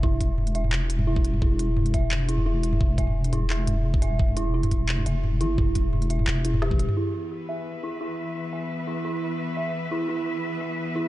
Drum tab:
HH |--x--xx---x---x-|--x--xx---x---x-|--x--xx---x---x-|--x--xx---x---x-|
CP |--------x-------|--------x-------|--------x-------|--------x-------|
SD |----------------|----------------|----------------|----------------|
T1 |----------------|----------------|----------------|----------------|
T2 |o---o--o---o---o|o---o---o--o---o|---o--o---o---o-|-o---o---o--o---|
BD |o-o----------o--|o-----o---------|o-o----------o--|o-----o---------|

HH |--x--xx---x---x-|----------------|----------------|----------------|
CP |--------x-------|----------------|----------------|----------------|
SD |------------o---|----------------|----------------|----------------|
T1 |-------------o--|----------------|----------------|----------------|
T2 |o---o--o---o---o|----------------|----------------|----------------|
BD |o-o----------o--|----------------|----------------|----------------|